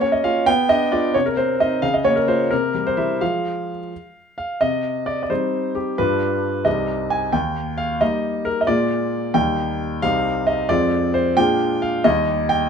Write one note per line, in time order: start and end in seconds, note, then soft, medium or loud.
0.00 0.45 A#3 medium
0.00 0.23 C#4 soft
0.00 0.50 C#5 medium
0.12 0.24 D#5 medium
0.24 0.45 C#4 soft
0.24 0.45 F4 soft
0.24 0.47 F5 medium
0.46 1.12 B3 medium
0.46 0.69 G5 loud
0.69 0.91 D4 soft
0.69 0.92 D#5 medium
0.92 1.13 D4 soft
0.92 1.13 F4 soft
0.92 1.15 D5 medium
1.14 1.81 C3 medium
1.14 1.26 C#5 medium
1.26 1.37 A#4 medium
1.37 1.59 C4 soft
1.37 1.60 C5 medium
1.60 1.81 C4 soft
1.60 1.81 D#4 soft
1.60 1.83 D#5 medium
1.82 2.49 C#3 medium
1.82 1.94 F5 medium
1.94 2.05 D#5 medium
2.05 2.27 A#3 soft
2.05 2.17 C#5 medium
2.16 2.28 A#4 medium
2.28 2.49 A#3 soft
2.28 2.49 F4 soft
2.28 2.51 C5 medium
2.51 3.18 C3 medium
2.51 2.86 A#4 medium
2.75 2.96 G3 soft
2.87 2.98 C5 medium
2.97 3.18 G3 soft
2.97 3.19 E4 soft
2.97 3.21 E5 medium
3.21 3.71 F3 soft
3.21 3.78 G#3 soft
3.21 3.78 F4 soft
3.21 4.36 F5 medium
4.38 4.61 F5 medium
4.61 5.28 C3 medium
4.61 5.07 D#5 medium
5.06 5.21 D5 medium
5.23 5.30 D5 soft
5.30 5.95 G3 soft
5.30 5.95 C4 soft
5.30 5.95 D#4 soft
5.30 5.76 C5 medium
5.75 5.98 G4 medium
5.98 6.64 G2 medium
5.98 6.62 G3 soft
5.98 6.62 D4 soft
5.98 6.63 F4 soft
5.98 6.66 B4 medium
6.65 7.31 C2 soft
6.65 7.29 G3 soft
6.65 7.30 C4 soft
6.65 7.30 D#4 soft
6.65 7.11 D#5 medium
7.10 7.33 G#5 medium
7.32 7.99 D#2 medium
7.32 7.78 G5 medium
7.78 8.01 F5 medium
8.01 8.64 G3 soft
8.01 8.65 A#3 soft
8.01 8.65 D#4 soft
8.01 8.46 D#5 medium
8.45 8.61 A#4 medium
8.61 8.68 D#5 medium
8.67 9.33 A#2 medium
8.67 9.31 G#3 soft
8.67 9.31 A#3 soft
8.67 9.32 F4 soft
8.67 9.35 D5 medium
9.34 10.00 D#2 medium
9.34 9.98 G3 soft
9.34 9.99 A#3 soft
9.34 9.99 D#4 soft
9.34 9.80 G5 medium
10.02 10.68 C2 medium
10.02 10.66 G3 soft
10.02 10.66 C4 soft
10.02 10.66 D#4 soft
10.02 10.47 F5 loud
10.47 10.69 D#5 medium
10.69 11.35 F2 medium
10.69 11.33 G#3 soft
10.69 11.33 C4 soft
10.69 11.33 F4 soft
10.69 11.14 D5 medium
11.14 11.37 C5 medium
11.37 12.03 A#2 medium
11.37 12.01 G#3 medium
11.37 12.01 D4 soft
11.37 12.01 F4 soft
11.37 11.82 G5 loud
11.82 12.05 F5 medium
12.04 12.69 D#2 medium
12.04 12.69 G3 soft
12.04 12.69 D#4 soft
12.04 12.69 G4 soft
12.04 12.50 D#5 medium
12.49 12.69 G5 medium